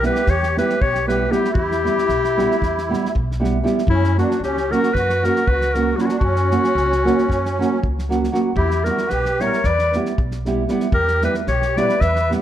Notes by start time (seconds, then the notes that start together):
0.03 G3 B3 E4 G4 B4, snare
0.08 G4
0.15 snare
0.27 E2 G4 C#5, kick, snare
0.43 snare
0.57 G3 B3 E4 G4 B4, snare
0.69 snare
0.81 B1 G4 C#5, kick
0.95 snare
1.07 G3 B3 E4 G4 B4, snare
1.30 G3 B3 E4 G4, snare
1.44 snare
1.53 E2 E4 G4, kick
1.71 snare
1.83 G3 B3 E4 G4, snare
1.98 snare
2.09 B1, snare
2.24 snare
2.37 G3 B3 E4 G4, snare
2.51 snare
2.61 E2, kick, snare
2.78 snare
2.89 G3 B3 E4 G4
2.93 snare
3.05 snare
3.15 B1, kick
3.31 snare
3.40 G3 B3 E4 G4
3.44 snare
3.63 G3 B3 E4 G4, snare
3.78 snare
3.87 F#2 C#4 E4, kick
4.04 snare
4.16 F#3 A#3 C#4 D4 F#4, snare
4.31 snare
4.40 C#2 C#4 G4, snare
4.57 snare
4.70 F#3 A#3 C#4 F#4 A#4, snare
4.83 snare
4.94 F#2 F#4 B4, kick, snare
5.09 snare
5.23 F#3 A#3 C#4 F#4 A#4, snare
5.36 snare
5.47 C#2 F#4 B4, kick
5.61 snare
5.74 F#3 A#3 C#4 F#4 A#4, snare
5.96 F#3 A#3 C#4 D4 F#4, snare
6.01 C#4 E4
6.06 D4 F#4, snare
6.19 F#2 C#4 F#4, kick
6.36 snare
6.51 F#3 A#3 C#4 F#4, snare
6.64 snare
6.75 C#2, snare
6.92 snare
7.05 F#3 A#3 C#4 F#4, snare
7.18 snare
7.28 F#2, kick, snare
7.45 snare
7.59 F#3 A#3 C#4 F#4, snare
7.82 C#2, kick
7.99 snare
8.09 F#3 A#3 C#4 F#4, snare
8.23 snare
8.32 F#3 A#3 C#4 F#4, snare
8.56 E2 E4 G4, kick
8.71 snare
8.84 G3 B3 E4 F#4 G4 A#4, snare
8.98 snare
9.10 B1 G4 B4, snare
9.25 snare
9.39 G3 B3 E4 G4 A#4 C#5, snare
9.53 snare
9.64 E2 B4 D5, kick, snare
9.79 snare
9.93 G3 B3 E4 G4, snare
10.05 snare
10.18 B1, kick
10.31 snare
10.45 G3 B3 E4 G4, snare
10.68 G3 B3 E4 G4, snare
10.80 snare
10.92 E2 G4 A#4, kick
11.08 snare
11.21 G3 B3 E4 G4 B4, snare
11.34 snare
11.47 B1 G4 C#5, snare
11.62 snare
11.76 G3 B3 E4 G4 B4 D5, snare
11.89 snare
12.01 E2 B4 E5, kick, snare
12.16 snare
12.30 G3 B3 E4 G4, snare